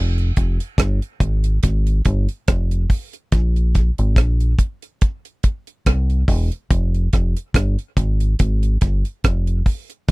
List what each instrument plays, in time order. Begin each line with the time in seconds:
Already playing: fingered electric bass F1
0.18 closed hi-hat
0.37 fingered electric bass F1, kick, closed hi-hat
0.60 closed hi-hat
0.78 fingered electric bass G1, kick, cross-stick, closed hi-hat
1.02 closed hi-hat
1.20 fingered electric bass G#1, kick, closed hi-hat
1.44 closed hi-hat
1.63 fingered electric bass G#1, kick, closed hi-hat
1.87 closed hi-hat
2.05 fingered electric bass G1, kick, closed hi-hat
2.29 closed hi-hat
2.48 fingered electric bass F1, kick, cross-stick, closed hi-hat
2.71 closed hi-hat
2.90 kick, open hi-hat
3.13 closed hi-hat
3.32 fingered electric bass A#1, kick, closed hi-hat
3.56 closed hi-hat
3.75 kick, closed hi-hat
3.98 fingered electric bass G#1, closed hi-hat
4.16 fingered electric bass A#1, kick, cross-stick, closed hi-hat
4.40 closed hi-hat
4.59 kick, closed hi-hat
4.82 closed hi-hat
5.01 kick, closed hi-hat
5.25 closed hi-hat
5.43 kick, closed hi-hat
5.67 closed hi-hat
5.86 fingered electric bass C2, kick, cross-stick, closed hi-hat
6.10 closed hi-hat
6.28 fingered electric bass E1, kick, open hi-hat
6.52 closed hi-hat
6.71 fingered electric bass F1, kick, closed hi-hat
6.94 closed hi-hat
7.13 fingered electric bass F1, kick, cross-stick, closed hi-hat
7.37 closed hi-hat
7.54 fingered electric bass G1, kick, cross-stick, closed hi-hat
7.79 closed hi-hat
7.97 fingered electric bass G#1, kick, closed hi-hat
8.20 closed hi-hat
8.39 fingered electric bass G#1, kick, closed hi-hat
8.63 closed hi-hat
8.81 fingered electric bass G1, kick, closed hi-hat
9.05 closed hi-hat
9.24 fingered electric bass F1, kick, cross-stick, closed hi-hat
9.47 closed hi-hat
9.66 kick, open hi-hat
9.90 closed hi-hat
10.08 closed hi-hat